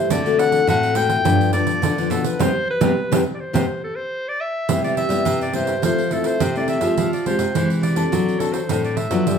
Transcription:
Already playing: clarinet C5
0.10 nylon-string guitar D3 A3 C4 F#4, clarinet D5, pandeiro
0.26 nylon-string guitar A3 C4 F#4, pandeiro
0.39 clarinet F#5, pandeiro
0.52 pandeiro
0.67 nylon-string guitar A2 A3 C4 F#4, clarinet F#5, pandeiro
0.83 pandeiro
0.95 nylon-string guitar A3 C4 F#4, clarinet G5, pandeiro
1.09 pandeiro
1.25 nylon-string guitar G2 F3 B3 D4, pandeiro
1.41 pandeiro
1.53 nylon-string guitar F3 B3 D4, clarinet D5, pandeiro
1.67 pandeiro
1.82 nylon-string guitar D3, pandeiro
1.98 nylon-string guitar F3 B3 D4, pandeiro
2.10 nylon-string guitar B2, clarinet A4, pandeiro
2.24 clarinet B4, pandeiro
2.39 nylon-string guitar C3 G3 B3 C4, clarinet C5, pandeiro
2.70 clarinet B4
2.81 nylon-string guitar C3 G3 B3 C4, pandeiro
3.12 nylon-string guitar C3 G3 B3 C4, clarinet B4, pandeiro
3.34 clarinet D5
3.40 clarinet C5
3.53 nylon-string guitar C3 G3 B3 C4, pandeiro
3.84 clarinet A4
3.96 clarinet C5
4.28 clarinet D5
4.41 clarinet E5
4.69 nylon-string guitar C3 G3 B3 E4, pandeiro
4.84 nylon-string guitar G3 B3 E4, clarinet D5, pandeiro
4.97 clarinet E5, pandeiro
5.09 nylon-string guitar G3 B3 E4, pandeiro
5.25 nylon-string guitar G2 C3, pandeiro
5.41 clarinet D5, pandeiro
5.53 nylon-string guitar G3 B3 E4, clarinet C5, pandeiro
5.67 pandeiro
5.82 nylon-string guitar F3 A3 C4 E4, clarinet C5, pandeiro
5.99 pandeiro
6.11 nylon-string guitar A3 C4 E4, clarinet A4, pandeiro
6.24 clarinet C5, pandeiro
6.40 nylon-string guitar C3, pandeiro
6.56 nylon-string guitar A3 C4 E4, clarinet D5, pandeiro
6.68 clarinet E5, pandeiro
6.81 nylon-string guitar F3 G#3 C4 G4, pandeiro
6.97 nylon-string guitar F3, pandeiro
7.13 clarinet D5, pandeiro
7.26 nylon-string guitar G#3 C4 G4, clarinet C5, pandeiro
7.39 nylon-string guitar C3, pandeiro
7.55 nylon-string guitar C3 E3 G#3 C4 G4, clarinet C5, pandeiro
7.70 pandeiro
7.83 clarinet D5, pandeiro
7.96 nylon-string guitar C4 D4 A4, pandeiro
8.12 nylon-string guitar F#3, pandeiro
8.29 pandeiro
8.40 nylon-string guitar C4 D4 A4, clarinet A4, pandeiro
8.53 clarinet C5, pandeiro
8.69 nylon-string guitar A2 F#3 C4 D4 A4, pandeiro
8.84 clarinet D5, pandeiro
8.97 clarinet E5, pandeiro
9.11 nylon-string guitar F3 F#3 B3 D4, pandeiro
9.27 nylon-string guitar G2 G3, pandeiro

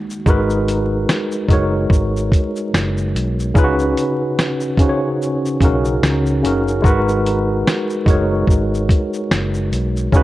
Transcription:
Already playing: analog synth pad D#3 G#3 F#4, tine electric piano G#3 A#3 D#4
0.10 shaker
0.26 fingered electric bass G#1, tine electric piano G#3 D#4 F#4 A#4, kick, shaker
0.30 tine electric piano B4
0.50 shaker
0.68 closed hi-hat, shaker
1.09 snare, shaker
1.32 shaker
1.49 fingered electric bass F#1, tine electric piano G#3 D#4 F#4 A#4, kick, closed hi-hat, shaker
1.53 tine electric piano C#5
1.90 fingered electric bass G#1, kick, shaker
2.17 shaker
2.32 kick, closed hi-hat, shaker
2.56 shaker
2.74 fingered electric bass F#1, snare, shaker
2.97 shaker
3.15 fingered electric bass B1, closed hi-hat, shaker
3.40 shaker
3.54 fingered electric bass C#2, tine electric piano C#3 C#4 D#4 F4, kick, shaker
3.58 tine electric piano B4
3.64 tine electric piano F#4
3.79 shaker
3.97 closed hi-hat, shaker
4.39 snare, shaker
4.60 shaker
4.77 tine electric piano C#3 C#4 D#4, kick, closed hi-hat, shaker
4.82 tine electric piano F#4 C5
4.89 tine electric piano C#5
5.22 shaker
5.46 shaker
5.60 fingered electric bass B1, tine electric piano C#3 C#4 D#4 F#4, kick, closed hi-hat, shaker
5.65 tine electric piano A#4
5.85 shaker
6.03 fingered electric bass C#2, snare, shaker
6.26 shaker
6.43 fingered electric bass F#1, tine electric piano C#3 C#4 D#4 F#4, closed hi-hat, shaker
6.47 tine electric piano A#4
6.68 shaker
6.82 fingered electric bass G#1, tine electric piano G#3 D#4 F#4 A#4, kick, shaker
6.86 tine electric piano B4
7.09 shaker
7.26 closed hi-hat, shaker
7.67 snare, shaker
7.90 shaker
8.06 fingered electric bass F#1, tine electric piano G#3 D#4 F#4 A#4, kick, closed hi-hat, shaker
8.10 tine electric piano C#5
8.47 fingered electric bass G#1, kick, shaker
8.74 shaker
8.89 kick, closed hi-hat, shaker
9.14 shaker
9.31 fingered electric bass F#1, snare, shaker
9.54 shaker
9.72 fingered electric bass B1, closed hi-hat, shaker
9.97 shaker
10.12 fingered electric bass C#2, tine electric piano C#3 C#4 D#4 F#4, kick, shaker
10.17 tine electric piano B4

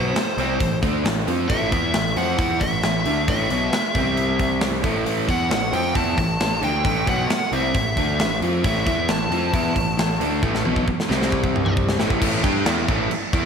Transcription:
Already playing: picked electric bass B1, overdriven electric guitar B2 F#3 B3, lead electric guitar C5
0.15 muted overdriven electric guitar stroke, muted picked electric bass stroke, snare, open hi-hat
0.37 picked electric bass C2, overdriven electric guitar C3 G3 C4, open hi-hat
0.60 picked electric bass A1, overdriven electric guitar A2 E3, kick, open hi-hat
0.82 picked electric bass D2, overdriven electric guitar D3 A3 D4, kick, open hi-hat
1.04 picked electric bass A1, overdriven electric guitar A2 E3, snare, open hi-hat
1.27 picked electric bass F2, overdriven electric guitar F3 C4 F4, open hi-hat
1.48 picked electric bass A1, overdriven electric guitar A2 E3 A3, lead electric guitar E5, kick, open hi-hat
1.71 picked electric bass E2, overdriven electric guitar E3 B3 E4, kick, open hi-hat
1.93 picked electric bass A1, overdriven electric guitar A2 E3, snare, open hi-hat
2.16 picked electric bass F2, overdriven electric guitar F3 C4 F4, lead electric guitar F#5, open hi-hat
2.38 picked electric bass E2, overdriven electric guitar E3 B3 E4, kick, open hi-hat
2.60 picked electric bass A1, overdriven electric guitar A2 E3, lead electric guitar E5, kick, open hi-hat
2.83 picked electric bass A1, overdriven electric guitar A2 E3, snare, open hi-hat
3.06 picked electric bass D2, overdriven electric guitar D3 A3 D4, open hi-hat
3.28 picked electric bass A1, overdriven electric guitar A2 E3 A3, lead electric guitar E5, kick, open hi-hat
3.49 picked electric bass B1, overdriven electric guitar B2 F#3 B3, open hi-hat
3.72 muted picked electric bass stroke, muted overdriven electric guitar stroke, snare, open hi-hat
3.95 picked electric bass C2, overdriven electric guitar C3 G3 C4, kick, open hi-hat
4.17 open hi-hat
4.39 kick, open hi-hat
4.61 snare, open hi-hat
4.83 picked electric bass A1, overdriven electric guitar A2 E3 A3, kick, open hi-hat
5.06 picked electric bass A1, overdriven electric guitar A2 E3 A3, open hi-hat
5.28 picked electric bass E2, overdriven electric guitar E3 B3 E4, lead electric guitar F#5, kick, open hi-hat
5.50 picked electric bass A1, overdriven electric guitar A2 E3, snare, open hi-hat
5.72 picked electric bass F2, overdriven electric guitar F3 C4 F4, lead electric guitar G5, open hi-hat
5.94 picked electric bass E2, overdriven electric guitar E3 B3 E4, lead electric guitar A5, kick, open hi-hat
6.17 picked electric bass A1, overdriven electric guitar A2 E3, lead electric guitar A5, kick, open hi-hat
6.40 picked electric bass A1, overdriven electric guitar A2 E3, snare, open hi-hat
6.62 picked electric bass D2, overdriven electric guitar D3 A3 D4, lead electric guitar G5, open hi-hat
6.84 picked electric bass A1, overdriven electric guitar A2 E3 A3, kick, open hi-hat
7.06 picked electric bass B1, overdriven electric guitar B2 F#3 B3, lead electric guitar F#5, kick, open hi-hat
7.29 muted picked electric bass stroke, muted overdriven electric guitar stroke, snare, open hi-hat
7.52 picked electric bass C2, overdriven electric guitar C3 G3 C4, lead electric guitar E5, open hi-hat
7.75 picked electric bass A1, overdriven electric guitar A2 E3, kick, open hi-hat
7.97 picked electric bass D2, overdriven electric guitar D3 A3 D4, kick, open hi-hat
8.19 picked electric bass A1, overdriven electric guitar A2 E3, snare, open hi-hat
8.41 picked electric bass F2, overdriven electric guitar F3 C4 F4, open hi-hat
8.64 picked electric bass A1, overdriven electric guitar A2 E3 A3, lead electric guitar E5, kick, open hi-hat
8.86 picked electric bass E2, overdriven electric guitar E3 B3 E4, lead electric guitar E5, kick, open hi-hat
9.09 picked electric bass A1, overdriven electric guitar A2 E3, lead electric guitar A5, snare, open hi-hat
9.30 picked electric bass F2, overdriven electric guitar F3 C4 F4, open hi-hat
9.53 picked electric bass E2, overdriven electric guitar E3 B3 E4, kick, open hi-hat
9.75 picked electric bass A1, overdriven electric guitar A2 E3, kick, open hi-hat
9.98 picked electric bass A1, overdriven electric guitar A2 E3, snare, open hi-hat
10.20 picked electric bass D2, overdriven electric guitar D3 A3 D4, open hi-hat
10.42 picked electric bass A1, overdriven electric guitar A2 E3 A3, kick
10.55 snare
10.64 picked electric bass B1, overdriven electric guitar B2 F#3 B3, high tom
10.76 kick
10.87 muted overdriven electric guitar stroke, muted picked electric bass stroke, kick
11.00 snare
11.09 picked electric bass C2, overdriven electric guitar C3 G3 C4, snare
11.22 snare
11.32 kick
11.44 kick
11.56 mid tom
11.66 mid tom
11.77 kick
11.89 snare
11.98 picked electric bass A1, overdriven electric guitar A2 E3 A3, snare
12.10 kick
12.20 picked electric bass A1, overdriven electric guitar A2 E3 A3, kick, crash
12.42 picked electric bass G2, overdriven electric guitar G3 D4 G4, kick, crash
12.66 picked electric bass E2, overdriven electric guitar E3 B3 E4, snare, crash
12.88 picked electric bass A1, overdriven electric guitar A2 E3 A3, kick, crash
13.11 muted picked electric bass stroke, muted overdriven electric guitar stroke, crash
13.33 picked electric bass E2, overdriven electric guitar E3 B3 E4, kick, crash

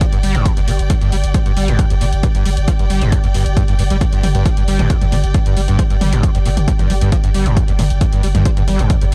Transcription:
Already playing: string section G4 D5 G5
0.01 acid bass F3, kick, closed hi-hat
0.13 sub bass G1, acid bass G2, closed hi-hat
0.23 sub bass G1, acid bass G3, open hi-hat
0.35 sub bass G1, acid bass G2, closed hi-hat
0.45 acid bass F2, kick, closed hi-hat
0.57 sub bass G1, acid bass F2, closed hi-hat
0.68 sub bass G1, acid bass A#2, open hi-hat
0.79 sub bass G1, closed hi-hat
0.90 acid bass G2, kick, closed hi-hat
1.01 sub bass G1, acid bass G2, closed hi-hat
1.12 sub bass G1, acid bass G3, open hi-hat
1.24 sub bass G1, closed hi-hat
1.34 acid bass F3, kick, closed hi-hat
1.46 sub bass G1, acid bass G2, closed hi-hat
1.57 sub bass G1, acid bass G3, open hi-hat
1.68 sub bass G1, acid bass G2, closed hi-hat
1.79 acid bass F2, kick, closed hi-hat
1.90 sub bass G1, acid bass F2, closed hi-hat
2.01 sub bass G1, acid bass A#2, open hi-hat
2.13 sub bass G1, closed hi-hat
2.23 acid bass G2, kick, closed hi-hat
2.35 sub bass G1, acid bass G2, closed hi-hat
2.46 sub bass G1, acid bass G3, open hi-hat
2.57 sub bass G1, closed hi-hat
2.68 acid bass F3, kick, closed hi-hat
2.79 sub bass G1, acid bass G2, closed hi-hat
2.90 sub bass G1, acid bass G3, open hi-hat
3.01 sub bass G1, acid bass G2, closed hi-hat
3.12 acid bass F2, kick, closed hi-hat
3.24 sub bass G1, acid bass F2, closed hi-hat
3.34 sub bass G1, acid bass G2, open hi-hat
3.46 sub bass G1, closed hi-hat
3.57 acid bass G2, kick, closed hi-hat
3.68 sub bass G1, acid bass G2, closed hi-hat
3.79 sub bass G1, acid bass G2, open hi-hat
3.90 sub bass G1, acid bass G3, closed hi-hat
4.01 acid bass G2, kick, closed hi-hat
4.13 sub bass G1, acid bass G2, closed hi-hat
4.23 sub bass G1, acid bass G3, open hi-hat, mid tom
4.35 sub bass G1, acid bass G2, closed hi-hat
4.46 acid bass F3, kick, closed hi-hat
4.57 sub bass G1, acid bass G2, closed hi-hat
4.68 sub bass G1, acid bass G3, open hi-hat
4.79 sub bass G1, acid bass G2, closed hi-hat, mid tom
4.90 acid bass F2, kick, closed hi-hat
5.01 sub bass G1, acid bass F2, closed hi-hat, mid tom
5.12 sub bass G1, acid bass A#2, open hi-hat, mid tom
5.24 sub bass G1, closed hi-hat
5.34 acid bass G2, kick, closed hi-hat
5.46 sub bass G1, acid bass G2, closed hi-hat
5.57 sub bass G1, acid bass G3, open hi-hat
5.68 sub bass G1, acid bass G2, closed hi-hat
5.79 acid bass F3, kick, closed hi-hat
5.90 sub bass G1, acid bass G2, closed hi-hat
6.01 sub bass G1, acid bass G3, open hi-hat, mid tom
6.13 sub bass G1, acid bass G2, closed hi-hat
6.23 acid bass F2, kick, closed hi-hat
6.35 sub bass G1, acid bass F2, closed hi-hat
6.46 sub bass G1, acid bass A#2, open hi-hat
6.57 sub bass G1, closed hi-hat, mid tom
6.68 acid bass G2, kick, closed hi-hat
6.79 sub bass G1, acid bass G2, closed hi-hat, mid tom
6.90 sub bass G1, acid bass G3, open hi-hat, mid tom
7.01 sub bass G1, acid bass G2, closed hi-hat
7.12 acid bass F3, kick, closed hi-hat
7.24 sub bass G1, acid bass G2, closed hi-hat
7.34 sub bass G1, acid bass G3, open hi-hat
7.46 sub bass G1, acid bass G2, closed hi-hat
7.57 acid bass F2, kick, closed hi-hat
7.68 sub bass G1, acid bass F2, closed hi-hat
7.79 sub bass G1, acid bass A#2, open hi-hat, mid tom
7.90 sub bass G1, closed hi-hat
8.01 acid bass G2, kick, closed hi-hat
8.13 sub bass G1, acid bass G2, closed hi-hat
8.23 sub bass G1, acid bass G3, open hi-hat
8.35 sub bass G1, acid bass G2, closed hi-hat, mid tom
8.45 acid bass F3, kick, closed hi-hat
8.57 sub bass G1, acid bass G2, closed hi-hat, mid tom
8.68 sub bass G1, acid bass G3, open hi-hat, mid tom
8.79 sub bass G1, acid bass G2, closed hi-hat
8.90 acid bass F2, kick, closed hi-hat
9.01 sub bass G1, acid bass F2, closed hi-hat

